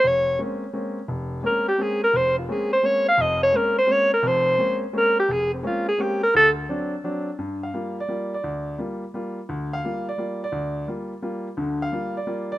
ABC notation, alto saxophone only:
X:1
M:3/4
L:1/8
Q:"Swing" 1/4=172
K:Bbdor
V:1 name="Alto saxophone"
d2 z4 | z2 B G A B | c F A c d f | e d B c d B |
c3 z B G | A C F A G B | =A z4 z | [K:Gm] z6 |
z6 | z6 | z6 | z6 |]